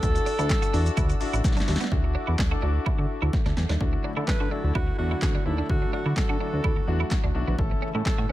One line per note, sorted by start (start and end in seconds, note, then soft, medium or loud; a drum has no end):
0.00 0.19 D2 loud
0.00 0.31 D4 medium
0.00 0.31 E4 medium
0.00 0.31 F#4 medium
0.00 1.44 A4 loud
0.00 1.90 D5 medium
0.00 1.90 F#5 medium
0.00 1.88 A5 medium
0.00 1.90 E6 medium
0.00 kick loud
0.00 closed hi-hat medium
0.00 shaker medium
0.15 muted clean electric guitar stroke soft
0.15 closed hi-hat medium
0.15 shaker medium
0.26 0.36 D4 medium
0.26 open hi-hat medium
0.26 shaker soft
0.39 0.55 D2 loud
0.39 0.67 D4 medium
0.39 0.47 E4 medium
0.39 0.67 E4 medium
0.39 0.67 A4 loud
0.39 closed hi-hat soft
0.39 shaker medium
0.50 muted clean electric guitar stroke soft
0.50 kick loud
0.50 snare loud
0.50 clap loud
0.50 closed hi-hat medium
0.50 shaker medium
0.62 0.71 F#4 medium
0.62 closed hi-hat medium
0.62 shaker medium
0.73 0.90 E2 loud
0.73 1.12 D4 medium
0.73 0.83 D4 medium
0.73 1.12 E4 medium
0.73 1.12 F#4 loud
0.73 open hi-hat medium
0.73 shaker medium
0.86 closed hi-hat medium
0.86 shaker medium
0.97 1.13 D2 loud
0.97 1.07 E4 medium
0.97 kick loud
0.97 closed hi-hat medium
0.97 shaker medium
1.10 muted clean electric guitar stroke soft
1.10 closed hi-hat medium
1.10 shaker medium
1.20 1.26 A1 soft
1.20 1.40 D4 medium
1.20 1.40 E4 medium
1.20 1.40 F#4 loud
1.20 open hi-hat medium
1.20 shaker medium
1.33 1.41 A1 medium
1.33 1.42 E4 medium
1.33 closed hi-hat medium
1.33 shaker medium
1.44 1.61 B1 loud
1.44 1.82 D4 medium
1.44 1.83 F#4 loud
1.44 kick loud
1.44 snare medium
1.44 closed hi-hat medium
1.44 shaker medium
1.52 snare medium
1.57 1.65 D4 medium
1.57 snare medium
1.57 closed hi-hat medium
1.57 shaker medium
1.68 1.77 D#2 loud
1.68 muted clean electric guitar stroke soft
1.68 snare medium
1.68 open hi-hat medium
1.68 shaker soft
1.76 snare loud
1.80 1.89 B3 medium
1.80 snare loud
1.80 closed hi-hat medium
1.80 shaker medium
1.92 2.16 D2 loud
1.92 2.39 D4 medium
1.92 2.39 E4 medium
1.92 2.39 F#4 loud
1.92 3.79 A4 medium
1.92 3.79 E5 medium
1.92 3.79 F#5 medium
1.92 3.79 D6 medium
1.92 kick loud
2.04 muted clean electric guitar stroke soft
2.15 2.25 D4 medium
2.27 2.36 E2 medium
2.27 2.36 E4 medium
2.39 2.55 D2 medium
2.39 muted clean electric guitar stroke soft
2.39 kick loud
2.39 snare loud
2.39 clap loud
2.51 2.60 D4 medium
2.51 2.60 E4 medium
2.51 2.60 F#4 medium
2.51 2.60 A4 loud
2.62 2.79 D2 medium
2.62 2.72 D4 medium
2.62 3.38 D4 medium
2.62 3.38 E4 medium
2.62 3.38 F#4 loud
2.86 2.91 D3 soft
2.86 2.96 E4 medium
2.86 kick loud
2.99 3.06 D3 medium
2.99 muted clean electric guitar stroke soft
3.22 3.30 D2 medium
3.22 3.31 E4 medium
3.33 kick loud
3.33 snare medium
3.46 3.53 D2 medium
3.46 3.55 D4 medium
3.46 snare medium
3.57 3.66 E2 medium
3.57 muted clean electric guitar stroke soft
3.57 snare medium
3.69 3.77 D#2 medium
3.69 3.78 D4 medium
3.69 snare medium
3.80 3.97 D2 loud
3.80 7.55 D3 medium
3.80 7.55 F#3 medium
3.80 8.32 A3 medium
3.80 4.09 D4 medium
3.80 4.09 E4 medium
3.80 5.68 E4 medium
3.80 4.09 F#4 medium
3.80 kick loud
3.93 muted clean electric guitar stroke soft
4.04 4.14 D4 medium
4.17 4.24 D3 loud
4.17 4.45 D4 medium
4.17 4.25 E4 medium
4.17 4.45 E4 medium
4.17 4.45 A4 medium
4.28 4.33 D3 soft
4.28 4.53 B4 loud
4.28 muted clean electric guitar stroke soft
4.28 kick loud
4.28 snare loud
4.28 clap loud
4.40 4.48 D3 medium
4.40 4.49 F#4 medium
4.51 4.89 D4 medium
4.51 4.61 D4 medium
4.51 4.90 E4 medium
4.51 4.90 F#4 medium
4.51 4.74 A4 loud
4.64 4.72 D2 medium
4.75 4.91 D2 loud
4.75 4.85 E4 medium
4.75 4.97 F#4 loud
4.75 kick loud
4.88 muted clean electric guitar stroke soft
4.98 5.15 E2 medium
4.98 5.37 D4 medium
4.98 5.37 E4 medium
4.98 5.43 F#4 medium
4.98 5.37 F#4 medium
5.11 5.20 E4 medium
5.22 5.38 D2 loud
5.22 kick loud
5.22 snare medium
5.22 clap loud
5.35 5.43 D4 medium
5.46 5.62 D#2 medium
5.46 5.65 D4 medium
5.46 5.68 E4 medium
5.46 5.65 E4 medium
5.46 5.65 A4 medium
5.46 muted clean electric guitar stroke soft
5.58 5.67 D4 medium
5.69 5.86 D2 loud
5.69 5.98 D4 medium
5.69 5.98 E4 medium
5.69 7.57 F#4 medium
5.69 5.92 F#4 loud
5.69 5.98 A4 medium
5.69 kick loud
5.82 muted clean electric guitar stroke soft
5.93 6.03 D4 medium
5.93 6.15 F#4 medium
6.05 6.13 D3 loud
6.05 6.33 D4 medium
6.05 6.34 E4 medium
6.05 6.14 E4 medium
6.05 6.34 F#4 medium
6.17 6.22 D3 soft
6.17 7.07 A4 medium
6.17 muted clean electric guitar stroke soft
6.17 kick loud
6.17 snare loud
6.17 clap loud
6.29 6.37 D3 loud
6.29 6.38 F#4 medium
6.40 6.78 D4 medium
6.40 6.50 D4 medium
6.40 6.78 E4 medium
6.40 6.79 F#4 medium
6.53 6.61 D2 loud
6.64 6.80 D2 loud
6.64 6.74 E4 medium
6.64 kick loud
6.76 muted clean electric guitar stroke soft
6.87 7.04 E2 medium
6.87 7.26 D4 medium
6.87 7.26 E4 medium
6.87 7.26 F#4 loud
7.00 7.09 E4 medium
7.11 kick loud
7.11 snare medium
7.11 clap loud
7.24 7.32 D2 medium
7.24 7.32 D4 medium
7.34 7.44 B1 medium
7.34 7.54 D4 medium
7.34 7.54 E4 medium
7.34 7.54 F#4 loud
7.34 muted clean electric guitar stroke soft
7.48 7.55 A#1 medium
7.48 7.56 B3 medium
7.58 7.75 A1 loud
7.58 8.32 C#3 medium
7.58 8.32 E3 medium
7.58 7.87 C#4 medium
7.58 7.87 E4 medium
7.58 8.32 E4 medium
7.58 7.87 A4 loud
7.58 kick loud
7.71 muted clean electric guitar stroke soft
7.82 7.92 C#4 medium
7.94 8.02 A2 loud
7.94 8.22 C#4 medium
7.94 8.22 E4 medium
7.94 8.03 E4 medium
7.94 8.23 A4 medium
8.06 8.11 A2 soft
8.06 8.31 A4 medium
8.06 muted clean electric guitar stroke soft
8.06 kick loud
8.06 snare loud
8.06 clap loud
8.18 8.26 A2 loud
8.18 8.27 F#4 medium
8.29 8.32 C#4 medium